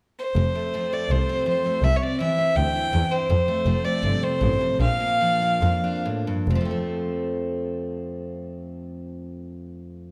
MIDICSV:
0, 0, Header, 1, 4, 480
1, 0, Start_track
1, 0, Key_signature, -1, "major"
1, 0, Tempo, 367197
1, 476, Time_signature, 4, 2, 24, 8
1, 5276, Tempo, 388350
1, 6716, Tempo, 429185
1, 8156, Tempo, 459067
1, 11947, End_track
2, 0, Start_track
2, 0, Title_t, "Fiddle"
2, 0, Program_c, 0, 110
2, 249, Note_on_c, 0, 72, 75
2, 1220, Note_on_c, 0, 74, 71
2, 1240, Note_off_c, 0, 72, 0
2, 1457, Note_on_c, 0, 72, 82
2, 1477, Note_off_c, 0, 74, 0
2, 1926, Note_off_c, 0, 72, 0
2, 1938, Note_on_c, 0, 72, 75
2, 2403, Note_on_c, 0, 76, 97
2, 2422, Note_off_c, 0, 72, 0
2, 2566, Note_on_c, 0, 73, 56
2, 2586, Note_off_c, 0, 76, 0
2, 2647, Note_on_c, 0, 74, 80
2, 2667, Note_off_c, 0, 73, 0
2, 2873, Note_off_c, 0, 74, 0
2, 2881, Note_on_c, 0, 76, 84
2, 3342, Note_on_c, 0, 79, 91
2, 3362, Note_off_c, 0, 76, 0
2, 4066, Note_on_c, 0, 72, 84
2, 4085, Note_off_c, 0, 79, 0
2, 5026, Note_on_c, 0, 74, 80
2, 5045, Note_off_c, 0, 72, 0
2, 5521, Note_on_c, 0, 72, 86
2, 5539, Note_off_c, 0, 74, 0
2, 6224, Note_off_c, 0, 72, 0
2, 6231, Note_on_c, 0, 77, 92
2, 7614, Note_off_c, 0, 77, 0
2, 11947, End_track
3, 0, Start_track
3, 0, Title_t, "Steel-string acoustic guitar"
3, 0, Program_c, 1, 25
3, 473, Note_on_c, 1, 41, 58
3, 723, Note_on_c, 1, 57, 50
3, 963, Note_on_c, 1, 53, 52
3, 976, Note_on_c, 1, 60, 52
3, 1199, Note_off_c, 1, 57, 0
3, 1212, Note_on_c, 1, 57, 54
3, 1447, Note_on_c, 1, 48, 55
3, 1684, Note_off_c, 1, 60, 0
3, 1689, Note_on_c, 1, 60, 52
3, 1891, Note_off_c, 1, 53, 0
3, 1907, Note_on_c, 1, 53, 57
3, 1921, Note_off_c, 1, 48, 0
3, 2149, Note_off_c, 1, 57, 0
3, 2165, Note_on_c, 1, 57, 51
3, 2361, Note_off_c, 1, 53, 0
3, 2370, Note_off_c, 1, 57, 0
3, 2392, Note_off_c, 1, 41, 0
3, 2400, Note_on_c, 1, 48, 65
3, 2655, Note_off_c, 1, 60, 0
3, 2655, Note_on_c, 1, 60, 50
3, 2876, Note_off_c, 1, 48, 0
3, 2880, Note_on_c, 1, 52, 61
3, 2890, Note_on_c, 1, 64, 52
3, 3110, Note_off_c, 1, 60, 0
3, 3116, Note_on_c, 1, 60, 50
3, 3342, Note_on_c, 1, 43, 54
3, 3583, Note_off_c, 1, 64, 0
3, 3598, Note_on_c, 1, 64, 50
3, 3812, Note_off_c, 1, 52, 0
3, 3828, Note_on_c, 1, 52, 64
3, 4057, Note_off_c, 1, 60, 0
3, 4072, Note_on_c, 1, 60, 52
3, 4276, Note_off_c, 1, 43, 0
3, 4280, Note_off_c, 1, 52, 0
3, 4282, Note_off_c, 1, 60, 0
3, 4285, Note_off_c, 1, 64, 0
3, 4307, Note_on_c, 1, 41, 64
3, 4548, Note_on_c, 1, 57, 55
3, 4779, Note_on_c, 1, 53, 59
3, 4789, Note_on_c, 1, 60, 53
3, 5010, Note_off_c, 1, 57, 0
3, 5026, Note_on_c, 1, 57, 55
3, 5262, Note_on_c, 1, 48, 57
3, 5496, Note_off_c, 1, 60, 0
3, 5511, Note_on_c, 1, 60, 52
3, 5730, Note_off_c, 1, 41, 0
3, 5735, Note_on_c, 1, 43, 61
3, 5977, Note_off_c, 1, 43, 0
3, 5984, Note_on_c, 1, 45, 57
3, 6187, Note_off_c, 1, 48, 0
3, 6190, Note_off_c, 1, 57, 0
3, 6224, Note_off_c, 1, 45, 0
3, 6224, Note_off_c, 1, 60, 0
3, 6224, Note_on_c, 1, 46, 60
3, 6467, Note_on_c, 1, 58, 46
3, 6719, Note_off_c, 1, 53, 0
3, 6723, Note_on_c, 1, 53, 60
3, 6729, Note_on_c, 1, 62, 48
3, 6944, Note_off_c, 1, 58, 0
3, 6961, Note_on_c, 1, 58, 46
3, 7177, Note_off_c, 1, 46, 0
3, 7185, Note_on_c, 1, 41, 57
3, 7414, Note_off_c, 1, 62, 0
3, 7427, Note_on_c, 1, 62, 51
3, 7660, Note_off_c, 1, 41, 0
3, 7670, Note_on_c, 1, 45, 58
3, 7909, Note_off_c, 1, 45, 0
3, 7914, Note_on_c, 1, 43, 57
3, 8130, Note_off_c, 1, 53, 0
3, 8132, Note_off_c, 1, 62, 0
3, 8134, Note_off_c, 1, 58, 0
3, 8161, Note_off_c, 1, 43, 0
3, 8173, Note_on_c, 1, 41, 57
3, 8224, Note_on_c, 1, 53, 58
3, 8279, Note_on_c, 1, 57, 48
3, 8328, Note_on_c, 1, 60, 52
3, 8384, Note_on_c, 1, 69, 49
3, 11947, Note_off_c, 1, 41, 0
3, 11947, Note_off_c, 1, 53, 0
3, 11947, Note_off_c, 1, 57, 0
3, 11947, Note_off_c, 1, 60, 0
3, 11947, Note_off_c, 1, 69, 0
3, 11947, End_track
4, 0, Start_track
4, 0, Title_t, "Double bass"
4, 0, Program_c, 2, 43
4, 471, Note_on_c, 2, 29, 81
4, 576, Note_off_c, 2, 29, 0
4, 1429, Note_on_c, 2, 36, 70
4, 1534, Note_off_c, 2, 36, 0
4, 2387, Note_on_c, 2, 36, 76
4, 2492, Note_off_c, 2, 36, 0
4, 3352, Note_on_c, 2, 38, 66
4, 3457, Note_off_c, 2, 38, 0
4, 3836, Note_on_c, 2, 40, 68
4, 3940, Note_off_c, 2, 40, 0
4, 4309, Note_on_c, 2, 41, 70
4, 4414, Note_off_c, 2, 41, 0
4, 4789, Note_on_c, 2, 29, 69
4, 4893, Note_off_c, 2, 29, 0
4, 5273, Note_on_c, 2, 31, 67
4, 5372, Note_off_c, 2, 31, 0
4, 5749, Note_on_c, 2, 33, 76
4, 5848, Note_off_c, 2, 33, 0
4, 6224, Note_on_c, 2, 34, 84
4, 6323, Note_off_c, 2, 34, 0
4, 7178, Note_on_c, 2, 41, 72
4, 7267, Note_off_c, 2, 41, 0
4, 8145, Note_on_c, 2, 29, 80
4, 8229, Note_off_c, 2, 29, 0
4, 11947, End_track
0, 0, End_of_file